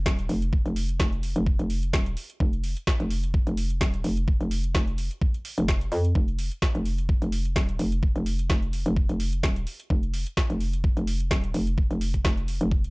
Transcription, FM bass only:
0.06 D#1
0.29 F1
0.66 F1
1.00 F1
1.36 F1
1.59 F1
1.93 D#1
2.40 F1
3.00 F1
3.47 F1
3.81 D#1
4.04 F1
4.41 F1
4.75 F1
5.58 F1
5.92 F2
6.15 F1
6.75 F1
7.22 F1
7.56 D#1
7.79 F1
8.16 F1
8.50 F1
8.86 F1
9.09 F1
9.43 D#1
9.90 F1
10.50 F1
10.97 F1
11.31 D#1
11.54 F1
11.91 F1
12.25 F1
12.61 F1

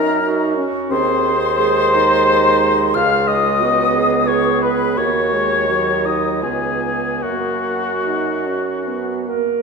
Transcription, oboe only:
Already playing: A#4
0.91 C5
2.96 F5
3.28 D#5
4.27 C#5
4.63 B4
4.98 C#5
6.06 D#5
6.43 G#4
7.23 F#4

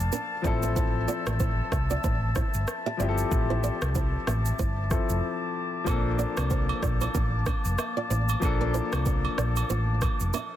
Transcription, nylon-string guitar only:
0.12 D4 A#4
0.44 F4 D5
0.63 E4 C5
0.76 E4 C5
1.08 F4 D5
1.27 G4 E5
1.40 E4 C5
1.72 G4 E5
1.91 F4 D5
2.04 E4 C5
2.36 E4 C5
2.86 G4 E5
3.00 F4 D5
3.50 E4 C5
3.64 F4 D5
3.95 E4 C5
4.27 G4 E5
4.59 E4 C5
5.87 F4 C5
6.19 F4 D5
6.37 A4 F5
6.51 F4 C5
6.83 F4 D5
7.01 E4 C5
7.14 D4 A#4
7.46 D4 A#4
7.97 F4 D5
8.10 E4 C5
8.61 D4 A#4
8.74 E4 C5
9.06 D4 A#4
9.38 F4 D5
9.70 F4 C5
10.34 D4 A#4

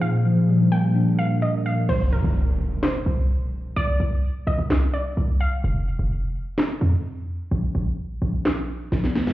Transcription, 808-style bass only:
1.89 C2
2.12 D#3
2.24 C2
2.83 D#2
3.06 C2
3.77 C2
4.00 C2
4.47 C2
4.59 C2
5.17 C2
5.64 F1
5.99 F1
6.81 F2
7.51 A#1
7.75 A#1
8.22 A#1
8.92 A#1
9.27 A#2

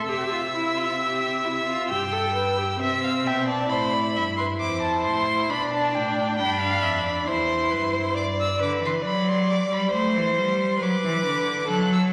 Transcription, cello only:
0.07 C3
1.90 G2
2.81 C3
3.26 B2
3.72 A2
4.17 G2
4.61 F2
5.06 A2
5.50 B2
5.96 A2
6.39 G2
6.82 F2
7.27 E2
7.72 G2
8.16 G2
8.61 D3
8.82 E3
9.04 F#3
9.71 G3
9.93 A3
10.16 E3
10.37 G3
10.81 F#3
11.03 E3
11.25 D3
11.70 F#3

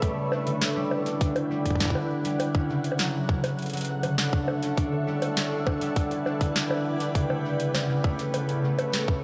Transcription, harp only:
Already playing: A3 C#4
0.02 G3
0.32 D4
0.47 D3
0.76 G3
1.06 D4
1.21 D3
1.51 G3
1.80 D4
1.95 D3
2.25 G3
2.55 C#4
2.69 C#3
2.99 F#3
3.29 C#4
3.44 C#3
3.73 F#3
4.03 D3
4.18 D4
4.48 A3
4.62 C#4
4.77 D4
4.92 D3
5.07 G3
5.52 D4
5.67 D3
5.81 G3
6.26 D4
6.41 D3
6.56 G3
7.00 D4
7.15 C#3
7.30 A3
7.74 C#4
7.89 C#3
8.04 A3
8.49 C#4
8.64 C#3
8.78 A3

